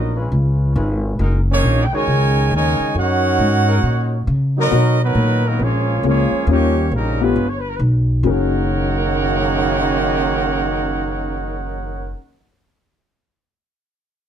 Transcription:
Already playing: upright bass A#1, trombone section F#3 B3 D#4, trumpet section B3 F#4 A#4 D#5
0.16 trombone section G#3 C#4 F4 B4
0.32 upright bass C#2
0.75 upright bass G#1, trombone section G#3 C#4 F4 B4
1.19 upright bass F#1, trombone section G#3 D#4 F#4 A#4
1.51 trombone section D#3 A#3 C#4, trumpet section A#3 D#4 G#4 C#5
1.64 upright bass A#1
1.85 trumpet section G5
1.92 trombone section C#3 D#3 G#3 D#4 F#4 C#5, trumpet section D#4 A#4 C#5 G#5, muted upright bass stroke
2.07 upright bass C#2
2.51 upright bass D#2, trombone section C#3 D#3 G#3, trumpet section A#4 C#5 G#5
2.55 trumpet section D#4
2.80 muted upright bass stroke
2.95 upright bass F#2, trombone section C#4 D#4 F#4, trumpet section D#4
2.99 trumpet section A#4 C#5 F#5
3.39 upright bass G#2
3.66 trombone section G#3 D#4 F#4 A#4
3.83 upright bass A#2
4.27 upright bass C#3
4.58 trombone section F#3 D#4 A#4, trumpet section B3 F#4 A#4 D#5
4.71 upright bass B2, grand piano B3 D#4 F#4 A#4 C#5
5.02 trombone section D#3 F#3 B3, trumpet section F#3 D#4 A#4 B4
5.15 upright bass A#2
5.45 trombone section D#3 F#3 A#3, trumpet section F#3 B3 D#4 A#4
5.59 upright bass A#1, trombone section F3 G#3 C#4, trumpet section A#3 F4 G#4 C#5
6.03 upright bass C#2, trombone section F3 G#3 C#4, grand piano A#3 C#4 F4 G#4 A#4, trumpet section A#3 F4 G#4 C#5
6.32 muted upright bass stroke
6.47 upright bass D#2, trombone section G3 A#3 C#4, grand piano A#3 C#4 D#4 F4 G4
6.51 trumpet section A#3 D#4 G4 C#5
6.91 upright bass A#1, trombone section C#3 G3 A#3, trumpet section G3 C#4 D#4 A#4
7.21 trumpet section G#3 C#4 F4 B4, grand piano A3 B3 D4 F4 G4, trombone section B3
7.36 upright bass G1
7.48 trumpet section C#5
7.59 trumpet section B4
7.69 trumpet section A#4
7.74 trumpet section B4
7.79 upright bass B1
8.23 upright bass F#1, grand piano F#2 F#3 D#4 G#4 A#4, trombone section F#2 C#3 D#3 A#3, trumpet section D#4 A#4 C#5 F#5

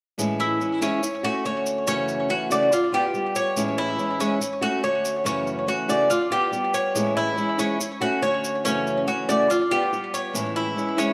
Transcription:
0.18 steel-string acoustic guitar A2 E3 G#3 C#4 E4, maracas
0.40 cuban tres E4, maracas
0.60 steel-string acoustic guitar E3 G#3 C#4 E4, maracas
0.81 steel-string acoustic guitar E3 G#3 C#4 E4, cuban tres C#4, maracas
1.02 muted steel-string acoustic guitar stroke, maracas
1.23 steel-string acoustic guitar A3 C#4 F#4, cuban tres F#4, maracas
1.45 steel-string acoustic guitar D3 A3 C#4 F#4, cuban tres C#5, maracas
1.66 maracas
1.87 steel-string acoustic guitar F#2 C#3 E3 A3 C#4 F#4, cuban tres C#4, maracas
2.08 maracas
2.29 steel-string acoustic guitar E3 A3 C#4 F#4, cuban tres F#4, maracas
2.50 steel-string acoustic guitar C#3 E3 A3 C#4 F#4, cuban tres D5, maracas
2.72 cuban tres F4, muted steel-string acoustic guitar stroke, maracas
2.92 steel-string acoustic guitar B3 F4, cuban tres G4, maracas
3.14 steel-string acoustic guitar G3 B3 F4, maracas
3.35 cuban tres C#5, maracas
3.56 steel-string acoustic guitar A2 E3 G#3 C#4 E4, maracas
3.78 cuban tres E4, maracas
3.98 steel-string acoustic guitar E3 G#3 C#4 E4, maracas
4.20 steel-string acoustic guitar E3 G#3 C#4 E4, cuban tres C#4, maracas
4.40 muted steel-string acoustic guitar stroke, maracas
4.61 steel-string acoustic guitar A3 C#4 F#4, cuban tres F#4, maracas
4.83 steel-string acoustic guitar D3 A3 C#4 F#4, cuban tres C#5, maracas
5.05 maracas
5.24 steel-string acoustic guitar F#2 C#3 E3 A3 C#4 F#4, cuban tres C#4, maracas
5.47 maracas
5.67 steel-string acoustic guitar E3 A3 C#4 F#4, cuban tres F#4, maracas
5.88 steel-string acoustic guitar C#3 E3 A3 C#4 F#4, cuban tres D5, maracas
6.10 cuban tres F4, muted steel-string acoustic guitar stroke, maracas
6.30 steel-string acoustic guitar B3 F4, cuban tres G4, maracas
6.51 steel-string acoustic guitar G3 B3 F4, maracas
6.74 cuban tres C#5, maracas
6.94 steel-string acoustic guitar A2 E3 G#3 C#4 E4, maracas
7.17 cuban tres E4, maracas
7.37 steel-string acoustic guitar E3 G#3 C#4 E4, maracas
7.58 steel-string acoustic guitar E3 G#3 C#4 E4, cuban tres C#4, maracas
7.80 muted steel-string acoustic guitar stroke, maracas
8.01 steel-string acoustic guitar A3 C#4 F#4, cuban tres F#4, maracas
8.22 steel-string acoustic guitar D3 A3 C#4 F#4, cuban tres C#5, maracas
8.44 maracas
8.64 steel-string acoustic guitar F#2 C#3 E3 A3 C#4 F#4, cuban tres C#4, maracas
8.87 maracas
9.06 steel-string acoustic guitar E3 A3 C#4 F#4, cuban tres F#4, maracas
9.29 steel-string acoustic guitar C#3 E3 A3 C#4 F#4, cuban tres D5, maracas
9.50 cuban tres F4, muted steel-string acoustic guitar stroke, maracas
9.71 steel-string acoustic guitar B3 F4, cuban tres G4, maracas
9.92 steel-string acoustic guitar G3 B3 F4, maracas
10.14 cuban tres C#5, maracas
10.33 steel-string acoustic guitar A2 E3 G#3 C#4 E4, maracas
10.56 cuban tres E4, maracas
10.76 steel-string acoustic guitar E3 G#3 C#4 E4, maracas
10.97 steel-string acoustic guitar E3 G#3 C#4 E4, cuban tres C#4, maracas

